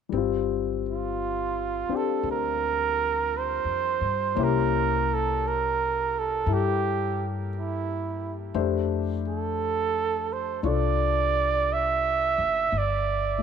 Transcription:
0, 0, Header, 1, 5, 480
1, 0, Start_track
1, 0, Tempo, 1058201
1, 55, Time_signature, 4, 2, 24, 8
1, 2455, Tempo, 1045296
1, 6135, End_track
2, 0, Start_track
2, 0, Title_t, "Flugelhorn"
2, 0, Program_c, 0, 56
2, 403, Note_on_c, 0, 65, 72
2, 889, Note_on_c, 0, 69, 75
2, 896, Note_off_c, 0, 65, 0
2, 1033, Note_off_c, 0, 69, 0
2, 1050, Note_on_c, 0, 70, 89
2, 1532, Note_on_c, 0, 72, 81
2, 1539, Note_off_c, 0, 70, 0
2, 2013, Note_on_c, 0, 70, 90
2, 2020, Note_off_c, 0, 72, 0
2, 2333, Note_on_c, 0, 69, 74
2, 2340, Note_off_c, 0, 70, 0
2, 2485, Note_on_c, 0, 70, 82
2, 2492, Note_off_c, 0, 69, 0
2, 2813, Note_on_c, 0, 69, 70
2, 2819, Note_off_c, 0, 70, 0
2, 2970, Note_on_c, 0, 67, 75
2, 2977, Note_off_c, 0, 69, 0
2, 3352, Note_off_c, 0, 67, 0
2, 3448, Note_on_c, 0, 64, 57
2, 3815, Note_off_c, 0, 64, 0
2, 4234, Note_on_c, 0, 69, 80
2, 4714, Note_on_c, 0, 72, 67
2, 4721, Note_off_c, 0, 69, 0
2, 4843, Note_off_c, 0, 72, 0
2, 4855, Note_on_c, 0, 73, 55
2, 4870, Note_on_c, 0, 74, 90
2, 4877, Note_off_c, 0, 73, 0
2, 5355, Note_on_c, 0, 76, 91
2, 5362, Note_off_c, 0, 74, 0
2, 5837, Note_on_c, 0, 74, 84
2, 5844, Note_off_c, 0, 76, 0
2, 6135, Note_off_c, 0, 74, 0
2, 6135, End_track
3, 0, Start_track
3, 0, Title_t, "Grand piano"
3, 0, Program_c, 1, 0
3, 41, Note_on_c, 1, 55, 45
3, 60, Note_on_c, 1, 60, 39
3, 78, Note_on_c, 1, 65, 41
3, 137, Control_c, 1, 64, 127
3, 852, Note_off_c, 1, 60, 0
3, 859, Note_on_c, 1, 60, 39
3, 861, Note_on_c, 1, 62, 35
3, 872, Note_on_c, 1, 67, 40
3, 1971, Note_off_c, 1, 55, 0
3, 1974, Note_on_c, 1, 58, 47
3, 1977, Note_on_c, 1, 61, 45
3, 1979, Note_off_c, 1, 60, 0
3, 1980, Note_off_c, 1, 62, 0
3, 1982, Control_c, 1, 64, 0
3, 1986, Note_off_c, 1, 67, 0
3, 1986, Note_on_c, 1, 64, 45
3, 1989, Note_off_c, 1, 65, 0
3, 1994, Note_on_c, 1, 67, 52
3, 2072, Control_c, 1, 64, 127
3, 2935, Note_off_c, 1, 64, 0
3, 2941, Note_off_c, 1, 67, 0
3, 2942, Note_on_c, 1, 64, 36
3, 2948, Note_on_c, 1, 67, 34
3, 2955, Note_on_c, 1, 69, 41
3, 3889, Note_off_c, 1, 67, 0
3, 3894, Note_on_c, 1, 57, 46
3, 3895, Note_on_c, 1, 62, 39
3, 3895, Note_on_c, 1, 67, 41
3, 3896, Note_off_c, 1, 58, 0
3, 3896, Note_on_c, 1, 72, 54
3, 3898, Note_off_c, 1, 61, 0
3, 3900, Note_off_c, 1, 64, 0
3, 3903, Control_c, 1, 64, 0
3, 3907, Note_off_c, 1, 69, 0
3, 3988, Control_c, 1, 64, 127
3, 4844, Note_off_c, 1, 62, 0
3, 4850, Note_on_c, 1, 62, 42
3, 4857, Note_on_c, 1, 65, 34
3, 4862, Note_on_c, 1, 69, 38
3, 5814, Note_off_c, 1, 57, 0
3, 5814, Note_off_c, 1, 62, 0
3, 5815, Note_off_c, 1, 67, 0
3, 5815, Note_off_c, 1, 72, 0
3, 5817, Note_off_c, 1, 65, 0
3, 5820, Note_off_c, 1, 69, 0
3, 5823, Control_c, 1, 64, 0
3, 5905, Control_c, 1, 64, 127
3, 6115, Note_on_c, 1, 57, 41
3, 6135, Note_off_c, 1, 57, 0
3, 6135, End_track
4, 0, Start_track
4, 0, Title_t, "Upright bass"
4, 0, Program_c, 2, 32
4, 56, Note_on_c, 2, 31, 65
4, 839, Note_off_c, 2, 31, 0
4, 1013, Note_on_c, 2, 38, 63
4, 1638, Note_off_c, 2, 38, 0
4, 1653, Note_on_c, 2, 41, 50
4, 1804, Note_off_c, 2, 41, 0
4, 1818, Note_on_c, 2, 43, 57
4, 1967, Note_off_c, 2, 43, 0
4, 1980, Note_on_c, 2, 36, 74
4, 2919, Note_off_c, 2, 36, 0
4, 2938, Note_on_c, 2, 43, 73
4, 3880, Note_off_c, 2, 43, 0
4, 3893, Note_on_c, 2, 41, 70
4, 4834, Note_off_c, 2, 41, 0
4, 4852, Note_on_c, 2, 36, 73
4, 5636, Note_off_c, 2, 36, 0
4, 5655, Note_on_c, 2, 30, 59
4, 5805, Note_off_c, 2, 30, 0
4, 5811, Note_on_c, 2, 31, 63
4, 6135, Note_off_c, 2, 31, 0
4, 6135, End_track
5, 0, Start_track
5, 0, Title_t, "Muted upright bass strokes"
5, 856, Note_on_c, 9, 29, 30
5, 901, Note_off_c, 9, 29, 0
5, 6135, End_track
0, 0, End_of_file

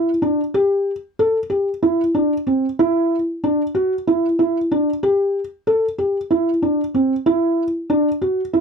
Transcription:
0, 0, Header, 1, 2, 480
1, 0, Start_track
1, 0, Tempo, 640342
1, 407, Time_signature, 7, 3, 24, 8
1, 6450, End_track
2, 0, Start_track
2, 0, Title_t, "Felt piano"
2, 0, Program_c, 0, 0
2, 165, Note_on_c, 0, 62, 73
2, 300, Note_off_c, 0, 62, 0
2, 407, Note_on_c, 0, 67, 82
2, 676, Note_off_c, 0, 67, 0
2, 894, Note_on_c, 0, 69, 81
2, 1026, Note_off_c, 0, 69, 0
2, 1123, Note_on_c, 0, 67, 69
2, 1258, Note_off_c, 0, 67, 0
2, 1368, Note_on_c, 0, 64, 75
2, 1502, Note_off_c, 0, 64, 0
2, 1608, Note_on_c, 0, 62, 70
2, 1742, Note_off_c, 0, 62, 0
2, 1849, Note_on_c, 0, 60, 70
2, 1983, Note_off_c, 0, 60, 0
2, 2093, Note_on_c, 0, 64, 85
2, 2360, Note_off_c, 0, 64, 0
2, 2576, Note_on_c, 0, 62, 85
2, 2707, Note_off_c, 0, 62, 0
2, 2808, Note_on_c, 0, 66, 74
2, 2942, Note_off_c, 0, 66, 0
2, 3054, Note_on_c, 0, 64, 70
2, 3186, Note_off_c, 0, 64, 0
2, 3291, Note_on_c, 0, 64, 70
2, 3424, Note_off_c, 0, 64, 0
2, 3534, Note_on_c, 0, 62, 69
2, 3666, Note_off_c, 0, 62, 0
2, 3771, Note_on_c, 0, 67, 84
2, 4038, Note_off_c, 0, 67, 0
2, 4251, Note_on_c, 0, 69, 81
2, 4384, Note_off_c, 0, 69, 0
2, 4486, Note_on_c, 0, 67, 70
2, 4620, Note_off_c, 0, 67, 0
2, 4727, Note_on_c, 0, 64, 68
2, 4861, Note_off_c, 0, 64, 0
2, 4965, Note_on_c, 0, 62, 68
2, 5100, Note_off_c, 0, 62, 0
2, 5206, Note_on_c, 0, 60, 72
2, 5340, Note_off_c, 0, 60, 0
2, 5443, Note_on_c, 0, 64, 78
2, 5712, Note_off_c, 0, 64, 0
2, 5919, Note_on_c, 0, 62, 82
2, 6055, Note_off_c, 0, 62, 0
2, 6158, Note_on_c, 0, 66, 69
2, 6295, Note_off_c, 0, 66, 0
2, 6397, Note_on_c, 0, 64, 69
2, 6450, Note_off_c, 0, 64, 0
2, 6450, End_track
0, 0, End_of_file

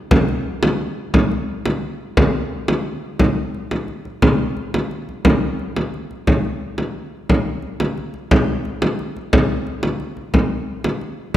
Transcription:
0, 0, Header, 1, 2, 480
1, 0, Start_track
1, 0, Tempo, 342466
1, 150, Time_signature, 3, 2, 24, 8
1, 8789, Tempo, 338028
1, 16029, End_track
2, 0, Start_track
2, 0, Title_t, "Frame drum"
2, 154, Note_on_c, 9, 64, 94
2, 294, Note_off_c, 9, 64, 0
2, 401, Note_on_c, 9, 64, 27
2, 541, Note_off_c, 9, 64, 0
2, 877, Note_on_c, 9, 64, 74
2, 1018, Note_off_c, 9, 64, 0
2, 1595, Note_on_c, 9, 64, 75
2, 1735, Note_off_c, 9, 64, 0
2, 1842, Note_on_c, 9, 64, 25
2, 1982, Note_off_c, 9, 64, 0
2, 2320, Note_on_c, 9, 64, 67
2, 2460, Note_off_c, 9, 64, 0
2, 3043, Note_on_c, 9, 64, 84
2, 3183, Note_off_c, 9, 64, 0
2, 3761, Note_on_c, 9, 64, 68
2, 3901, Note_off_c, 9, 64, 0
2, 4477, Note_on_c, 9, 64, 72
2, 4617, Note_off_c, 9, 64, 0
2, 4970, Note_on_c, 9, 64, 23
2, 5110, Note_off_c, 9, 64, 0
2, 5204, Note_on_c, 9, 64, 57
2, 5344, Note_off_c, 9, 64, 0
2, 5439, Note_on_c, 9, 64, 23
2, 5579, Note_off_c, 9, 64, 0
2, 5681, Note_on_c, 9, 64, 25
2, 5821, Note_off_c, 9, 64, 0
2, 5918, Note_on_c, 9, 64, 78
2, 6058, Note_off_c, 9, 64, 0
2, 6400, Note_on_c, 9, 64, 24
2, 6540, Note_off_c, 9, 64, 0
2, 6647, Note_on_c, 9, 64, 63
2, 6787, Note_off_c, 9, 64, 0
2, 6884, Note_on_c, 9, 64, 23
2, 7024, Note_off_c, 9, 64, 0
2, 7131, Note_on_c, 9, 64, 24
2, 7271, Note_off_c, 9, 64, 0
2, 7355, Note_on_c, 9, 64, 82
2, 7495, Note_off_c, 9, 64, 0
2, 7840, Note_on_c, 9, 64, 21
2, 7980, Note_off_c, 9, 64, 0
2, 8080, Note_on_c, 9, 64, 62
2, 8220, Note_off_c, 9, 64, 0
2, 8324, Note_on_c, 9, 64, 21
2, 8465, Note_off_c, 9, 64, 0
2, 8560, Note_on_c, 9, 64, 22
2, 8700, Note_off_c, 9, 64, 0
2, 8792, Note_on_c, 9, 64, 70
2, 8934, Note_off_c, 9, 64, 0
2, 9037, Note_on_c, 9, 64, 20
2, 9179, Note_off_c, 9, 64, 0
2, 9512, Note_on_c, 9, 64, 53
2, 9654, Note_off_c, 9, 64, 0
2, 10243, Note_on_c, 9, 64, 67
2, 10385, Note_off_c, 9, 64, 0
2, 10711, Note_on_c, 9, 64, 22
2, 10853, Note_off_c, 9, 64, 0
2, 10961, Note_on_c, 9, 64, 62
2, 11103, Note_off_c, 9, 64, 0
2, 11208, Note_on_c, 9, 64, 29
2, 11350, Note_off_c, 9, 64, 0
2, 11441, Note_on_c, 9, 64, 26
2, 11583, Note_off_c, 9, 64, 0
2, 11688, Note_on_c, 9, 64, 84
2, 11830, Note_off_c, 9, 64, 0
2, 12169, Note_on_c, 9, 64, 27
2, 12311, Note_off_c, 9, 64, 0
2, 12408, Note_on_c, 9, 64, 71
2, 12550, Note_off_c, 9, 64, 0
2, 12651, Note_on_c, 9, 64, 30
2, 12793, Note_off_c, 9, 64, 0
2, 12898, Note_on_c, 9, 64, 27
2, 13040, Note_off_c, 9, 64, 0
2, 13132, Note_on_c, 9, 64, 86
2, 13274, Note_off_c, 9, 64, 0
2, 13612, Note_on_c, 9, 64, 25
2, 13754, Note_off_c, 9, 64, 0
2, 13842, Note_on_c, 9, 64, 61
2, 13984, Note_off_c, 9, 64, 0
2, 14082, Note_on_c, 9, 64, 25
2, 14224, Note_off_c, 9, 64, 0
2, 14322, Note_on_c, 9, 64, 27
2, 14464, Note_off_c, 9, 64, 0
2, 14563, Note_on_c, 9, 64, 71
2, 14705, Note_off_c, 9, 64, 0
2, 15283, Note_on_c, 9, 64, 62
2, 15425, Note_off_c, 9, 64, 0
2, 15523, Note_on_c, 9, 64, 27
2, 15665, Note_off_c, 9, 64, 0
2, 16029, End_track
0, 0, End_of_file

